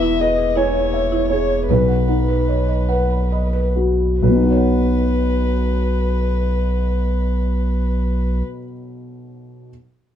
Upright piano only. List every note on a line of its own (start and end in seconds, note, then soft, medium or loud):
0.00 1.65 E2 medium
0.00 0.42 E4 soft
0.00 0.16 E5 medium
0.21 0.79 B4 soft
0.21 0.54 D#5 medium
0.56 1.26 C#5 medium
0.56 1.15 G#5 soft
0.94 1.54 E5 soft
1.30 1.69 G#4 soft
1.30 1.65 C#5 medium
1.70 4.18 B1 soft
1.70 3.73 B4 medium
2.09 2.73 D#4 soft
2.49 3.15 C#5 soft
2.89 3.58 F#5 soft
3.32 4.04 D#5 soft
3.76 4.22 F#4 soft
4.22 8.43 B1 soft
4.22 8.44 B4 medium
4.29 8.50 B2 soft
4.36 8.56 D#4 soft
4.43 8.64 F#4 soft
4.50 8.71 C#5 soft
4.57 8.78 F#5 soft